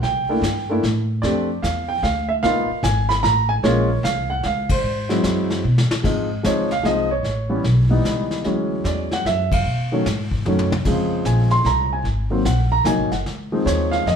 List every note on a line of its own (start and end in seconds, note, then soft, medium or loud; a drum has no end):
0.02 0.41 C2 medium
0.02 0.79 G5 medium
0.02 brush sweep soft
0.02 snare soft
0.29 0.42 A3 medium
0.29 0.42 A#3 medium
0.29 0.42 D4 medium
0.29 0.43 E4 medium
0.42 0.81 G2 medium
0.42 snare medium
0.42 hi-hat pedal medium
0.69 0.82 A3 medium
0.69 0.83 A#3 medium
0.69 0.83 D4 medium
0.69 0.83 E4 medium
0.83 1.22 A2 medium
0.83 snare soft
1.22 1.62 F2 medium
1.22 1.47 A3 medium
1.22 1.47 C4 medium
1.22 1.48 D4 medium
1.22 1.48 G4 medium
1.22 1.60 D5 medium
1.22 brush sweep soft
1.22 snare soft
1.62 2.02 E2 medium
1.62 1.90 F5 medium
1.62 snare medium
1.62 hi-hat pedal medium
1.88 2.02 G5 medium
2.03 2.42 D2 medium
2.03 2.30 F5 medium
2.03 snare soft
2.29 2.34 E5 medium
2.43 2.68 C#2 medium
2.43 2.67 A#3 medium
2.43 2.67 B3 medium
2.43 2.68 D#4 medium
2.43 2.68 F4 medium
2.43 2.81 F5 loud
2.43 brush sweep soft
2.43 snare soft
2.70 muted upright bass stroke soft
2.83 3.22 G#1 loud
2.83 3.11 G#5 medium
2.83 snare medium
2.83 hi-hat pedal medium
3.09 3.22 B5 medium
3.09 snare soft
3.23 3.62 A1 medium
3.23 3.48 A#5 loud
3.23 snare soft
3.49 3.54 G#5 medium
3.63 4.02 A#1 medium
3.63 3.87 G#3 medium
3.63 3.88 A#3 medium
3.63 3.88 C#4 medium
3.63 3.88 F4 medium
3.63 4.01 C#5 medium
3.63 brush sweep soft
3.63 snare soft
4.03 4.42 C2 medium
4.03 4.28 F5 medium
4.03 snare medium
4.03 hi-hat pedal soft
4.30 4.43 F#5 medium
4.43 4.83 C#2 medium
4.43 4.69 F5 medium
4.43 snare soft
4.69 5.61 C5 medium
4.69 kick medium
4.69 ride medium
4.83 5.23 G#2 medium
4.83 brush sweep soft
5.09 5.61 F#3 medium
5.09 5.61 G#3 medium
5.09 5.62 C4 medium
5.09 5.62 E4 medium
5.09 snare soft
5.23 5.63 F#2 medium
5.23 snare medium
5.23 hi-hat pedal medium
5.50 snare soft
5.64 5.89 B2 medium
5.78 snare medium
5.90 muted upright bass stroke soft
5.90 snare medium
6.03 6.43 G#2 medium
6.03 6.27 F3 soft
6.03 6.28 G#3 soft
6.03 6.28 C4 soft
6.03 6.28 D#4 medium
6.03 brush sweep soft
6.03 kick medium
6.03 snare soft
6.03 crash medium
6.43 6.83 C#2 medium
6.43 6.67 F3 medium
6.43 6.68 G#3 soft
6.43 6.68 C4 medium
6.43 6.68 D#4 medium
6.43 6.69 C#5 medium
6.43 snare medium
6.43 hi-hat pedal medium
6.71 6.86 F5 medium
6.71 snare soft
6.83 7.22 C2 medium
6.83 7.08 F3 medium
6.83 7.08 G#3 medium
6.83 7.08 C4 soft
6.83 7.09 D#4 medium
6.83 7.12 D#5 medium
6.83 snare soft
7.11 7.87 C#5 medium
7.23 7.63 A1 medium
7.23 brush sweep soft
7.23 snare soft
7.49 7.63 E3 medium
7.49 7.63 G3 medium
7.49 7.63 B3 medium
7.49 7.63 C#4 medium
7.64 8.04 B1 medium
7.64 snare soft
7.89 8.41 E3 medium
7.89 8.42 G3 medium
7.89 8.42 B3 medium
7.89 8.42 D#4 medium
8.04 8.43 C#2 medium
8.04 snare soft
8.04 hi-hat pedal soft
8.31 snare soft
8.44 8.84 D2 medium
8.44 9.57 E3 medium
8.44 9.57 F#3 soft
8.44 9.57 G#3 soft
8.44 9.57 C#4 medium
8.44 brush sweep soft
8.44 snare soft
8.84 9.24 E2 medium
8.84 9.13 D5 medium
8.84 snare medium
8.84 hi-hat pedal medium
9.11 9.25 F#5 medium
9.11 snare soft
9.25 9.64 F#2 medium
9.25 9.50 E5 medium
9.25 snare soft
9.52 10.29 F5 medium
9.52 kick medium
9.52 ride medium
9.65 10.04 B2 medium
9.65 brush sweep soft
9.92 10.04 D#3 medium
9.92 10.05 F#3 medium
9.92 10.05 A3 medium
9.92 10.05 C#4 medium
10.06 10.45 G#2 medium
10.06 snare medium
10.06 hi-hat pedal soft
10.31 kick medium
10.45 10.84 F#2 medium
10.45 10.69 D#3 medium
10.45 10.69 F#3 medium
10.45 10.70 A3 medium
10.45 10.70 C#4 medium
10.45 mid tom soft
10.59 mid tom medium
10.72 mid tom medium
10.85 11.25 F2 medium
10.85 11.98 C#3 medium
10.85 11.98 F3 soft
10.85 11.98 G#3 soft
10.85 11.99 C4 medium
10.85 brush sweep soft
10.85 kick medium
10.85 snare soft
10.85 crash medium
11.25 11.64 A#1 medium
11.25 11.53 G#5 medium
11.25 snare medium
11.25 hi-hat pedal soft
11.50 11.66 C6 medium
11.50 snare soft
11.64 12.03 C2 medium
11.64 11.93 A#5 medium
11.64 snare soft
11.93 12.06 G#5 medium
12.04 12.44 G#1 medium
12.04 brush sweep soft
12.04 snare soft
12.30 12.44 D#3 medium
12.30 12.44 F#3 soft
12.30 12.44 A#3 soft
12.30 12.45 C4 medium
12.45 12.84 A#1 medium
12.45 12.70 F#5 medium
12.45 snare medium
12.45 hi-hat pedal medium
12.72 12.87 A#5 medium
12.84 12.99 C2 medium
12.84 13.09 D#3 medium
12.84 13.09 F#3 soft
12.84 13.10 A#3 soft
12.84 13.10 D#4 medium
12.84 13.11 G#5 medium
12.84 snare soft
12.84 hi-hat pedal medium
12.98 13.11 G#1 medium
13.12 13.25 F#1 medium
13.12 13.17 F#5 medium
13.12 snare soft
13.26 13.65 C#2 medium
13.26 brush sweep soft
13.26 snare soft
13.52 14.04 D#3 medium
13.52 14.04 F3 soft
13.52 14.04 G#3 medium
13.52 14.05 C4 medium
13.66 14.05 D#2 medium
13.66 13.93 C#5 medium
13.66 snare medium
13.66 hi-hat pedal medium
13.91 14.07 F5 medium
13.91 snare soft
14.06 14.16 F2 medium
14.06 14.16 D#5 medium
14.06 snare soft